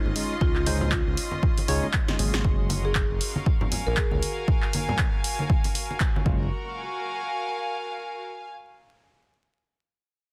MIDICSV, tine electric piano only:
0, 0, Header, 1, 2, 480
1, 0, Start_track
1, 0, Tempo, 508475
1, 389, Time_signature, 4, 2, 24, 8
1, 9743, End_track
2, 0, Start_track
2, 0, Title_t, "Tine electric piano"
2, 0, Program_c, 0, 4
2, 145, Note_on_c, 0, 56, 73
2, 146, Note_on_c, 0, 61, 65
2, 147, Note_on_c, 0, 63, 69
2, 148, Note_on_c, 0, 65, 66
2, 150, Note_on_c, 0, 75, 83
2, 313, Note_off_c, 0, 56, 0
2, 314, Note_off_c, 0, 61, 0
2, 315, Note_off_c, 0, 63, 0
2, 315, Note_off_c, 0, 65, 0
2, 316, Note_off_c, 0, 75, 0
2, 625, Note_on_c, 0, 56, 105
2, 626, Note_on_c, 0, 61, 95
2, 628, Note_on_c, 0, 63, 94
2, 629, Note_on_c, 0, 65, 91
2, 631, Note_on_c, 0, 72, 109
2, 873, Note_off_c, 0, 56, 0
2, 873, Note_off_c, 0, 61, 0
2, 874, Note_off_c, 0, 63, 0
2, 875, Note_off_c, 0, 65, 0
2, 876, Note_off_c, 0, 72, 0
2, 1586, Note_on_c, 0, 56, 100
2, 1587, Note_on_c, 0, 61, 99
2, 1588, Note_on_c, 0, 63, 94
2, 1590, Note_on_c, 0, 65, 93
2, 1591, Note_on_c, 0, 73, 117
2, 1754, Note_off_c, 0, 56, 0
2, 1755, Note_off_c, 0, 61, 0
2, 1755, Note_off_c, 0, 63, 0
2, 1756, Note_off_c, 0, 65, 0
2, 1756, Note_off_c, 0, 73, 0
2, 1964, Note_on_c, 0, 56, 71
2, 1965, Note_on_c, 0, 61, 67
2, 1967, Note_on_c, 0, 63, 68
2, 1967, Note_on_c, 0, 65, 67
2, 1969, Note_on_c, 0, 75, 81
2, 2052, Note_off_c, 0, 56, 0
2, 2052, Note_off_c, 0, 61, 0
2, 2053, Note_off_c, 0, 63, 0
2, 2053, Note_off_c, 0, 65, 0
2, 2054, Note_off_c, 0, 75, 0
2, 2066, Note_on_c, 0, 49, 87
2, 2067, Note_on_c, 0, 54, 76
2, 2068, Note_on_c, 0, 56, 80
2, 2069, Note_on_c, 0, 58, 78
2, 2070, Note_on_c, 0, 68, 91
2, 2523, Note_off_c, 0, 49, 0
2, 2523, Note_off_c, 0, 54, 0
2, 2524, Note_off_c, 0, 56, 0
2, 2525, Note_off_c, 0, 58, 0
2, 2525, Note_off_c, 0, 68, 0
2, 5900, Note_on_c, 0, 49, 83
2, 5903, Note_on_c, 0, 54, 75
2, 5908, Note_on_c, 0, 56, 77
2, 5912, Note_on_c, 0, 58, 76
2, 5915, Note_on_c, 0, 65, 89
2, 6089, Note_off_c, 0, 49, 0
2, 6091, Note_off_c, 0, 54, 0
2, 6094, Note_off_c, 0, 56, 0
2, 6096, Note_off_c, 0, 58, 0
2, 6098, Note_off_c, 0, 65, 0
2, 9743, End_track
0, 0, End_of_file